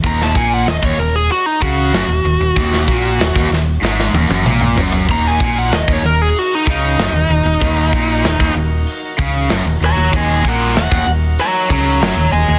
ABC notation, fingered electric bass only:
X:1
M:4/4
L:1/16
Q:1/4=95
K:Ebm
V:1 name="Fingered electric bass" clef=bass
E,,,2 B,,,2 E,,, E,,, E,,,2 z2 D,,2 G,,, E,,, E,,, E,,, | E,,,2 B,,,2 E,,, E,,, E,,,2 A,,,2 E,,, G,,, B,,,2 G,,,2 | E,,,2 B,,,2 E,,, E,,, E,,,2 z2 D,,2 G,,, E,,, E,,, E,,, | E,,,2 B,,,2 E,,, E,,, E,,,2 z2 D,,2 G,,, E,,, E,,, E,,, |
E,,,2 B,,,2 E,,, E,,, E,,,2 z2 D,,2 G,,, E,,, E,,, E,,, |]